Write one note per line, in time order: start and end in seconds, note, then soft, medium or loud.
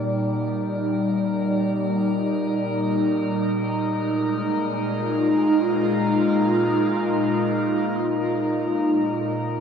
0.00 3.70 A#2 medium
0.00 3.72 G3 medium
0.00 9.60 D#4 medium
0.00 9.60 A#4 medium
0.00 5.35 D5 medium
0.00 9.60 A#5 medium
3.71 9.60 A#2 medium
3.88 9.60 G#3 medium
4.62 9.60 F4 medium